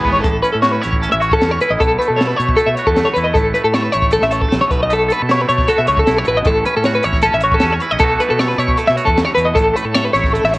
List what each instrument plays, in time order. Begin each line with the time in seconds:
Already playing: clean electric guitar E2 B2 E3 G#4 B4, overdriven electric guitar E3 G#3 B3 E4 G#4
0.05 fingered electric bass G#1, clean electric guitar B3, kick
0.12 clean electric guitar C#5
0.20 fingered electric bass A1, clean electric guitar A2 A4, kick, closed hi-hat
0.42 clean electric guitar C#4 B4, closed hi-hat
0.52 fingered electric bass A2, clean electric guitar A4
0.62 clean electric guitar F#4 C#5, snare, closed hi-hat
0.72 clean electric guitar B4
0.82 fingered electric bass A1, clean electric guitar E4 C#5, snare, closed hi-hat
0.93 kick
1.02 clean electric guitar C#4 A4, closed hi-hat
1.12 fingered electric bass A1, clean electric guitar E5
1.20 clean electric guitar F#4 C#5, closed hi-hat
1.32 clean electric guitar A4, kick
1.42 fingered electric bass E2, clean electric guitar C#4, snare, closed hi-hat
1.51 clean electric guitar C#5
1.61 clean electric guitar E4 B4, closed hi-hat
1.70 fingered electric bass A1, clean electric guitar D#5
1.80 fingered electric bass B1, clean electric guitar B2 A4, kick, closed hi-hat
1.99 clean electric guitar A3 B4, closed hi-hat
2.08 fingered electric bass B2, clean electric guitar A4
2.17 clean electric guitar A4 C#5
2.21 snare, closed hi-hat
2.27 clean electric guitar B4
2.37 fingered electric bass B2, clean electric guitar E4 C#5, closed hi-hat
2.49 kick
2.57 clean electric guitar A3 A4, closed hi-hat
2.67 fingered electric bass B2, clean electric guitar E5
2.75 clean electric guitar F#4 C#5, closed hi-hat
2.87 fingered electric bass E2, clean electric guitar A4, kick
2.96 clean electric guitar A3, snare, closed hi-hat
3.05 clean electric guitar C#5
3.14 fingered electric bass E2, clean electric guitar B4, closed hi-hat
3.18 clean electric guitar E4
3.24 clean electric guitar D#5
3.34 fingered electric bass A1, clean electric guitar A2 A4, kick, closed hi-hat
3.54 clean electric guitar A3 B4, closed hi-hat
3.64 fingered electric bass A2, clean electric guitar A4
3.74 clean electric guitar A4 C#5, snare, closed hi-hat
3.83 clean electric guitar B4
3.92 fingered electric bass A1, clean electric guitar E4 C#5, closed hi-hat
4.02 kick
4.11 clean electric guitar A3 A4, closed hi-hat
4.21 fingered electric bass A1, clean electric guitar E5, snare
4.31 clean electric guitar A4 C#5, closed hi-hat
4.42 clean electric guitar A4, kick
4.49 fingered electric bass A#1, clean electric guitar A3, snare, closed hi-hat
4.61 clean electric guitar C#5
4.68 fingered electric bass B1, clean electric guitar B2 B4, kick, closed hi-hat
4.83 clean electric guitar D#5
4.90 clean electric guitar A3 A4, closed hi-hat
5.08 clean electric guitar A4 B4, closed hi-hat
5.22 fingered electric bass B2, clean electric guitar A4
5.29 clean electric guitar E4 C#5, snare, closed hi-hat
5.41 clean electric guitar B4
5.47 fingered electric bass B2, clean electric guitar A3 C#5, closed hi-hat
5.58 kick, snare
5.68 clean electric guitar F#4 A4, closed hi-hat
5.78 fingered electric bass B2, clean electric guitar E5
5.86 fingered electric bass C#2, clean electric guitar A3 C#5, closed hi-hat
5.97 clean electric guitar A4, kick
6.07 fingered electric bass B1, clean electric guitar E4, snare, closed hi-hat
6.18 clean electric guitar C#5
6.24 fingered electric bass A1, clean electric guitar B2 B4, closed hi-hat
6.37 clean electric guitar D#5
6.45 fingered electric bass A1, clean electric guitar A2 A4, kick, closed hi-hat
6.65 clean electric guitar C#4 B4, closed hi-hat
6.77 fingered electric bass A2, clean electric guitar A4
6.84 clean electric guitar F#4 C#5, snare, closed hi-hat
6.95 clean electric guitar B4
7.03 fingered electric bass A1, clean electric guitar E4 C#5, closed hi-hat
7.12 kick, snare
7.22 clean electric guitar C#4 A4, closed hi-hat
7.33 fingered electric bass A1, clean electric guitar E5
7.41 clean electric guitar F#4 C#5, closed hi-hat
7.52 clean electric guitar A4, kick
7.60 fingered electric bass E2, clean electric guitar C#4, snare, closed hi-hat
7.72 clean electric guitar C#5
7.80 clean electric guitar E4 B4, closed hi-hat
7.91 fingered electric bass A#1, clean electric guitar D#5
7.99 fingered electric bass B1, clean electric guitar B2 E3 A4, kick, closed hi-hat
8.03 clean electric guitar A3 E4 F#4
8.20 clean electric guitar A3 B4, closed hi-hat
8.30 fingered electric bass B2, clean electric guitar A4
8.39 clean electric guitar A4 C#5, snare, closed hi-hat
8.48 clean electric guitar B4, snare
8.58 fingered electric bass B2, clean electric guitar E4 C#5, closed hi-hat
8.68 kick
8.77 clean electric guitar A3 A4, closed hi-hat
8.87 fingered electric bass B2, clean electric guitar E5, snare
8.96 clean electric guitar F#4 C#5, closed hi-hat
9.05 fingered electric bass E2, clean electric guitar A4, kick
9.17 clean electric guitar C#3, snare, closed hi-hat
9.25 clean electric guitar C#5
9.34 fingered electric bass E2, clean electric guitar B2 B4
9.38 closed hi-hat
9.45 clean electric guitar D#5
9.54 fingered electric bass A1, clean electric guitar A2 A4, kick, closed hi-hat
9.74 clean electric guitar A3 B4, closed hi-hat
9.85 fingered electric bass A2, clean electric guitar A4
9.94 clean electric guitar A4 C#5, snare, closed hi-hat
10.05 clean electric guitar B4
10.14 fingered electric bass A1, clean electric guitar E4 C#5, snare, closed hi-hat
10.24 kick, snare
10.33 clean electric guitar A3 A4, closed hi-hat
10.44 fingered electric bass A1, clean electric guitar E5, snare
10.52 clean electric guitar G#2 C#5, closed hi-hat